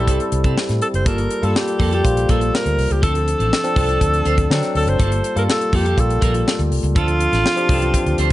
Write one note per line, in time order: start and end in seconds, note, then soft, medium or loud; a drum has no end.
0.00 1.05 G3 medium
0.00 1.08 C4 medium
0.00 1.08 E4 medium
0.00 1.07 G4 medium
0.00 0.51 A4 medium
0.00 1.06 A4 medium
0.00 1.07 C5 medium
0.07 0.18 C2 medium
0.07 0.27 C4 medium
0.07 0.19 G4 medium
0.07 0.18 A4 medium
0.07 kick medium
0.07 closed hi-hat loud
0.20 muted clean electric guitar stroke soft
0.20 closed hi-hat soft
0.32 0.42 C2 medium
0.32 muted clean electric guitar stroke soft
0.32 closed hi-hat medium
0.44 0.54 C3 medium
0.44 0.56 C4 soft
0.44 0.56 G4 medium
0.44 0.56 A4 medium
0.44 kick medium
0.44 closed hi-hat soft
0.57 muted clean electric guitar stroke soft
0.57 snare medium
0.69 0.79 A2 medium
0.69 muted clean electric guitar stroke soft
0.69 snare soft
0.69 closed hi-hat soft
0.82 0.88 A4 medium
0.82 closed hi-hat medium
0.94 1.06 F#1 medium
0.94 1.09 C5 medium
0.94 muted clean electric guitar stroke soft
0.94 closed hi-hat soft
1.05 1.26 G1 medium
1.05 1.35 G3 medium
1.05 1.35 A#3 medium
1.05 1.26 A#3 medium
1.05 1.35 F4 medium
1.05 1.18 F4 medium
1.05 1.35 A4 medium
1.05 1.17 A4 medium
1.05 1.46 A#4 medium
1.05 kick loud
1.05 closed hi-hat medium
1.18 muted clean electric guitar stroke soft
1.18 closed hi-hat soft
1.30 muted clean electric guitar stroke soft
1.30 closed hi-hat medium
1.42 1.53 G2 medium
1.42 1.91 G3 medium
1.42 1.91 A#3 medium
1.42 1.54 A#3 soft
1.42 1.91 F4 medium
1.42 1.54 F4 soft
1.42 1.55 A4 medium
1.42 1.92 A4 medium
1.42 1.58 A4 medium
1.42 closed hi-hat soft
1.55 1.93 G4 loud
1.55 muted clean electric guitar stroke soft
1.55 snare loud
1.67 muted clean electric guitar stroke soft
1.67 closed hi-hat soft
1.79 2.00 F2 medium
1.79 1.91 A#3 medium
1.79 1.91 F4 medium
1.79 1.90 A4 medium
1.79 kick medium
1.79 open hi-hat medium
1.91 2.03 A#3 soft
1.91 2.03 F4 medium
1.91 2.32 G4 medium
1.91 2.03 A4 medium
1.91 closed hi-hat soft
2.03 2.25 A#1 medium
2.03 2.82 G3 medium
2.03 2.82 A#3 medium
2.03 2.82 F4 medium
2.03 2.82 C5 medium
2.03 muted clean electric guitar stroke soft
2.03 kick medium
2.03 closed hi-hat medium
2.16 muted clean electric guitar stroke soft
2.16 closed hi-hat soft
2.29 2.49 A#1 medium
2.29 2.48 A#3 medium
2.29 2.41 F4 medium
2.29 2.56 A4 medium
2.29 2.40 A#4 medium
2.29 kick medium
2.29 closed hi-hat medium
2.41 muted clean electric guitar stroke soft
2.41 closed hi-hat soft
2.53 2.94 A#4 medium
2.53 muted clean electric guitar stroke soft
2.53 snare loud
2.65 2.76 D2 medium
2.65 muted clean electric guitar stroke soft
2.65 closed hi-hat soft
2.78 2.88 C2 medium
2.78 open hi-hat medium
2.90 3.01 C#2 medium
2.90 3.03 G4 medium
2.90 muted clean electric guitar stroke soft
2.90 closed hi-hat soft
3.02 3.33 D2 medium
3.02 3.51 F3 medium
3.02 3.22 C4 medium
3.02 3.51 C4 medium
3.02 3.51 D4 medium
3.02 3.14 F4 medium
3.02 3.13 A4 medium
3.02 3.52 A4 medium
3.02 4.71 A4 loud
3.02 kick loud
3.02 closed hi-hat medium
3.14 muted clean electric guitar stroke soft
3.14 closed hi-hat soft
3.26 muted clean electric guitar stroke soft
3.26 closed hi-hat medium
3.38 3.50 A1 medium
3.38 3.50 C4 soft
3.38 3.50 F4 medium
3.38 3.51 A4 medium
3.38 closed hi-hat soft
3.51 muted clean electric guitar stroke soft
3.51 snare loud
3.64 3.74 F3 medium
3.64 3.74 C4 medium
3.64 3.74 D4 medium
3.64 3.74 A4 medium
3.64 muted clean electric guitar stroke soft
3.64 closed hi-hat soft
3.76 3.97 C2 medium
3.76 4.50 F3 medium
3.76 3.88 C4 medium
3.76 4.49 C4 medium
3.76 4.50 D4 medium
3.76 3.88 F4 medium
3.76 3.87 A4 medium
3.76 4.50 A4 medium
3.76 kick medium
3.76 open hi-hat medium
3.88 3.99 C4 soft
3.88 4.00 F4 medium
3.88 4.00 A4 medium
3.88 closed hi-hat soft
4.01 4.22 D2 medium
4.01 muted clean electric guitar stroke soft
4.01 kick medium
4.01 closed hi-hat medium
4.13 muted clean electric guitar stroke soft
4.13 closed hi-hat soft
4.25 4.46 D2 medium
4.25 4.45 C4 medium
4.25 4.37 F4 medium
4.25 4.37 C5 medium
4.25 closed hi-hat medium
4.37 muted clean electric guitar stroke soft
4.37 kick medium
4.37 closed hi-hat soft
4.50 4.60 D3 medium
4.50 4.89 F#3 loud
4.50 4.90 C4 medium
4.50 4.90 D4 medium
4.50 4.90 A4 medium
4.50 muted clean electric guitar stroke soft
4.50 snare loud
4.62 muted clean electric guitar stroke soft
4.62 snare soft
4.62 closed hi-hat soft
4.75 4.85 D2 medium
4.75 4.90 A4 medium
4.75 open hi-hat medium
4.87 4.97 F#1 medium
4.87 5.37 C5 medium
4.87 muted clean electric guitar stroke soft
4.87 closed hi-hat soft
4.99 5.20 G1 loud
4.99 5.28 G3 medium
4.99 5.19 A#3 medium
4.99 5.28 A#3 medium
4.99 5.28 F4 medium
4.99 5.11 F4 loud
4.99 5.29 A4 medium
4.99 5.10 A4 medium
4.99 kick loud
4.99 closed hi-hat medium
5.12 muted clean electric guitar stroke soft
5.12 closed hi-hat soft
5.24 muted clean electric guitar stroke soft
5.24 closed hi-hat medium
5.36 5.46 G2 medium
5.36 5.84 G3 medium
5.36 5.85 A#3 medium
5.36 5.47 A#3 soft
5.36 5.85 F4 medium
5.36 5.47 F4 medium
5.36 5.48 A4 medium
5.36 5.85 A4 medium
5.36 5.43 A#4 medium
5.36 closed hi-hat medium
5.48 5.77 A4 medium
5.48 muted clean electric guitar stroke soft
5.48 snare loud
5.60 muted clean electric guitar stroke soft
5.60 closed hi-hat medium
5.73 5.93 F2 medium
5.73 5.85 A#3 medium
5.73 5.85 F4 medium
5.73 6.02 G4 medium
5.73 5.84 A4 medium
5.73 kick medium
5.73 open hi-hat medium
5.85 5.96 A#3 medium
5.85 5.97 F4 medium
5.85 5.97 A4 medium
5.85 closed hi-hat soft
5.97 6.18 A#1 medium
5.97 6.75 G3 medium
5.97 6.75 A#3 medium
5.97 6.75 F4 medium
5.97 6.75 G4 medium
5.97 6.70 A4 medium
5.97 muted clean electric guitar stroke soft
5.97 kick medium
5.97 closed hi-hat medium
6.10 muted clean electric guitar stroke soft
6.10 closed hi-hat soft
6.21 6.42 A#1 medium
6.21 6.41 A#3 medium
6.21 6.33 F4 medium
6.21 6.33 A#4 medium
6.21 kick medium
6.21 closed hi-hat medium
6.34 muted clean electric guitar stroke soft
6.34 closed hi-hat soft
6.46 muted clean electric guitar stroke soft
6.46 snare loud
6.59 6.69 D2 medium
6.59 muted clean electric guitar stroke medium
6.59 closed hi-hat soft
6.71 6.81 C2 medium
6.71 open hi-hat medium
6.83 6.94 C#2 medium
6.83 muted clean electric guitar stroke soft
6.83 closed hi-hat soft
6.95 7.26 D2 medium
6.95 7.44 F3 medium
6.95 7.44 C4 medium
6.95 7.15 C4 medium
6.95 7.44 D4 medium
6.95 7.08 F4 medium
6.95 8.33 F4 loud
6.95 7.44 A4 medium
6.95 7.07 A4 medium
6.95 kick loud
6.95 closed hi-hat medium
7.08 muted clean electric guitar stroke soft
7.08 closed hi-hat soft
7.20 muted clean electric guitar stroke soft
7.20 closed hi-hat medium
7.32 7.43 A1 medium
7.32 7.44 C4 soft
7.32 7.44 F4 soft
7.32 7.45 A4 soft
7.32 snare soft
7.32 closed hi-hat soft
7.45 muted clean electric guitar stroke soft
7.45 snare loud
7.56 7.66 F3 medium
7.56 7.67 C4 medium
7.56 7.67 D4 medium
7.56 7.67 G4 medium
7.56 muted clean electric guitar stroke soft
7.56 closed hi-hat soft
7.68 7.90 C2 medium
7.68 7.75 E3 medium
7.68 8.33 C4 medium
7.68 7.82 C4 medium
7.68 8.33 D4 medium
7.68 7.82 F4 medium
7.68 7.80 A4 medium
7.68 8.33 C5 medium
7.68 kick medium
7.68 open hi-hat medium
7.74 8.33 F3 medium
7.82 7.93 C4 soft
7.82 7.94 F4 medium
7.82 7.94 A4 medium
7.82 closed hi-hat soft
7.94 muted clean electric guitar stroke soft
7.94 kick medium
7.94 closed hi-hat medium
8.06 8.16 D2 medium
8.06 muted clean electric guitar stroke medium
8.06 closed hi-hat soft
8.18 8.28 D2 medium
8.18 8.33 C4 medium
8.18 8.31 F4 medium
8.18 8.30 C5 medium
8.18 closed hi-hat medium